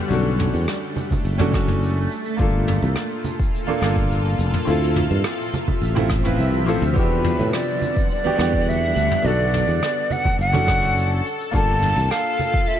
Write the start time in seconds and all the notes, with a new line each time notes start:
0.08 B1 A3 C#4 D4 F#4, cabasa
0.13 A4
0.40 mid tom, cabasa
0.53 E2, high conga, cabasa
0.68 cross-stick, cabasa
0.96 low conga, cabasa
1.11 kick, low conga, cabasa
1.25 F#1, cabasa
1.38 C#4 D4 F#4 A4, mid tom, high conga, low conga
1.52 C#4 D4 F#4 A4, kick, cross-stick, cabasa
1.68 mid tom, cabasa
1.83 cabasa
2.11 A#2 F4 A4, cabasa
2.25 cabasa
2.37 G1 A#3 D4 F4, kick, cabasa
2.42 A4
2.68 mid tom, cabasa
2.82 C2, high conga, cabasa
2.96 cross-stick, cabasa
3.24 low conga, cabasa
3.40 kick, cabasa
3.55 cabasa
3.67 A#3 D4 F4 A4, high conga
3.80 G1 A#3 D4 F4, cross-stick, cabasa
3.85 A4
3.97 kick, cabasa
4.12 cabasa
4.39 F1, cabasa
4.54 mid tom, cabasa
4.65 D2 C3 F3 C4 E4 F4 E5
4.69 A4, cabasa
4.83 cabasa
4.96 mid tom, cabasa
5.11 G2, high conga, cabasa
5.24 cross-stick, cabasa
5.41 cabasa
5.54 low conga, cabasa
5.68 kick, low conga, cabasa
5.82 A1, cabasa
5.95 C4 E4 F4 A4, mid tom, high conga, low conga, cabasa
6.10 kick, cross-stick, cabasa
6.24 C4 E4 F4 B4, mid tom, cabasa
6.39 C2, cabasa
6.54 cabasa
6.66 A1 C4 E4 F4 A4, cabasa
6.82 D2, cabasa
6.90 B3 C5
6.95 E2 D3 G3 D4 F#4 G4 B4 F#5, kick, cabasa
7.24 mid tom, cabasa
7.39 A2, high conga, cabasa
7.53 D5, cross-stick, cabasa
7.82 low conga, cabasa
7.97 kick, cabasa
8.11 D5, cabasa
8.24 B3 D4 F#4 G4, high conga
8.36 E2 B3 D4 F#4, cross-stick
8.41 G4, cabasa
8.54 kick, cabasa
8.69 E5, cabasa
8.96 D2, cabasa
9.11 mid tom, cabasa
9.22 B1 B3 D4 F#4 A4 D5
9.27 A4, cabasa
9.54 mid tom, cabasa
9.67 E2, high conga, cabasa
9.83 cross-stick, cabasa
10.10 F#5, low conga, cabasa
10.25 kick, low conga, cabasa
10.39 F#1 F#5, cabasa
10.53 C#4 D4 F#4 A4, mid tom, high conga, low conga
10.67 C#4 D4 F#4 A4, kick, cross-stick, cabasa
10.82 mid tom, cabasa
10.97 cabasa
11.25 A#2 F4, cabasa
11.40 cabasa
11.51 G1 A#3 D4 F4 A5, kick, cabasa
11.56 A4
11.83 mid tom, cabasa
11.96 C2, high conga, cabasa
12.11 F5, cross-stick, cabasa
12.39 low conga, cabasa
12.54 kick, cabasa
12.68 E5, cabasa